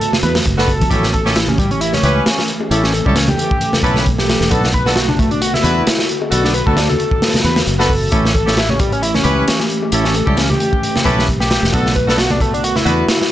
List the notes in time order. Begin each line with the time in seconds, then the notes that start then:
Already playing: D3 A3 B3 F#4 A4
0.01 closed hi-hat
0.12 snare, low conga
0.23 E2 B4, closed hi-hat, low conga
0.35 snare
0.45 F#1, kick, closed hi-hat
0.58 B3 D4 F#4 A4 B4, snare
0.67 kick, closed hi-hat, high bongo
0.81 kick, closed hi-hat, high conga
0.91 A1 E3 A3 C#4 E4 G4 A4, kick, closed hi-hat
1.03 snare
1.13 A4, kick, closed hi-hat
1.25 C#4 E4 G4 A4, snare
1.36 E4, snare, closed hi-hat
1.48 C#4, low conga
1.58 G3, kick, closed hi-hat
1.71 C#4, closed hi-hat
1.81 E4, closed hi-hat
1.93 C#4, snare, low conga
2.03 C#2 C#4 E4 G4 B4, closed hi-hat, low conga
2.26 snare, closed hi-hat
2.39 snare
2.48 closed hi-hat
2.60 high bongo
2.71 A1 C#4 E4 G4 A4, closed hi-hat
2.83 C#4, snare
2.93 A4, closed hi-hat
3.06 C#2 G3 C#4 E4 G4 A4, kick
3.16 C#4, snare, closed hi-hat
3.28 G4, closed hi-hat, low conga
3.39 closed hi-hat
3.51 kick
3.61 closed hi-hat
3.73 snare, low conga
3.83 B1 C#4 E4 G4 A4 B4, kick, closed hi-hat, low conga
3.96 snare
4.06 kick, closed hi-hat
4.18 G4, snare
4.29 snare, closed hi-hat
4.41 E1, snare
4.51 B1 D3 B3 D4 F#4 A4, kick, closed hi-hat
4.64 snare
4.73 B4, kick, closed hi-hat
4.86 B3 D4 F#4 A4, snare
4.96 F#4, snare, closed hi-hat
5.09 D4, low conga
5.19 A3, kick, closed hi-hat
5.31 D4, closed hi-hat
5.42 F#4, closed hi-hat
5.54 E4, snare, low conga
5.63 E2 B3 D4 F#4 B4, closed hi-hat, low conga
5.87 snare, closed hi-hat
5.99 snare
6.09 closed hi-hat
6.22 high bongo
6.31 B1 B3 D4 F#4 A4, closed hi-hat
6.44 D4, snare
6.54 B4, closed hi-hat
6.67 D2 A3 B3 D4 F#4 A4, kick
6.77 D4, snare, closed hi-hat
6.89 A4, closed hi-hat, low conga
7.00 closed hi-hat
7.11 kick
7.22 snare, closed hi-hat
7.28 snare, closed hi-hat
7.34 snare, closed hi-hat, low conga
7.40 snare, closed hi-hat
7.44 E2 B4, closed hi-hat, low conga
7.56 snare
7.67 F#1, closed hi-hat
7.79 B3 D4 F#4 A4 B4, snare
7.90 kick, open hi-hat
8.12 A1 E3 A3 C#4 E4 G4 A4, kick, closed hi-hat
8.25 snare
8.35 A4, kick, closed hi-hat
8.47 C#4 E4 G4 A4, snare
8.57 E4, snare, closed hi-hat
8.69 C#4, low conga
8.79 G3, kick, closed hi-hat
8.92 C#4, closed hi-hat
9.02 E4, closed hi-hat
9.15 C#4, snare, low conga
9.24 C#2 C#4 E4 G4 B4, closed hi-hat, low conga
9.48 snare, closed hi-hat
9.60 snare
9.70 closed hi-hat
9.82 high bongo
9.92 A1 C#4 E4 G4 A4, closed hi-hat
10.05 C#4, snare
10.15 A4, closed hi-hat
10.27 C#2 G3 C#4 E4 G4 A4, kick
10.37 C#4, snare, closed hi-hat
10.49 G4, closed hi-hat, low conga
10.60 closed hi-hat
10.73 kick
10.83 closed hi-hat
10.96 snare, low conga
11.05 B1 C#4 E4 G4 A4 B4, kick, closed hi-hat, low conga
11.19 snare
11.28 kick, closed hi-hat
11.40 G4, snare
11.51 snare, closed hi-hat
11.63 E1, snare
11.72 B1 D3 B3 D4 F#4 A4, kick, closed hi-hat
11.86 snare
11.96 B4, kick, closed hi-hat
12.08 B3 D4 F#4 A4, snare
12.18 F#4, snare, closed hi-hat
12.31 D4, low conga
12.41 A3, kick, closed hi-hat
12.54 D4, closed hi-hat
12.64 F#4, closed hi-hat
12.76 E4, snare, low conga
12.86 E2 B3 D4 F#4 B4, closed hi-hat, low conga
13.09 snare, closed hi-hat
13.21 snare